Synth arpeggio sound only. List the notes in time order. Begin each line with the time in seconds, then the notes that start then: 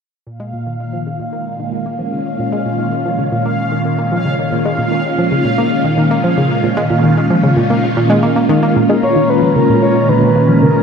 0.27 A#2
0.40 G#3
0.53 A#2
0.67 D#3
0.93 F3
1.07 C#3
1.20 A#2
1.33 A#3
1.60 D#3
1.73 D#3
1.86 A#3
1.99 F3
2.12 C#3
2.39 A#2
2.52 G#3
2.65 A#2
2.79 D#3
3.05 F3
3.19 C#3
3.32 A#2
3.46 A#3
3.72 D#3
3.85 D#3
3.98 A#3
4.12 F3
4.25 C#3
4.52 A#2
4.65 G#3
4.78 A#2
4.92 D#3
5.18 F3
5.32 C#3
5.45 A#2
5.58 A#3
5.85 D#3
5.98 D#3
6.11 A#3
6.24 F3
6.38 C#3
6.64 A#2
6.77 G#3
6.90 A#2
7.04 D#3
7.30 F3
7.43 C#3
7.57 A#2
7.70 A#3
7.97 A#2
8.10 G#3
8.23 A#3
8.36 A#3
8.49 D#3
8.63 A#3
8.76 A#2
8.89 G#3
9.03 A#2
9.16 D#3
9.42 F3
9.56 C#3
9.69 A#2
9.82 A#3
10.09 D#3
10.22 D#3
10.36 A#3
10.49 F3
10.62 C#3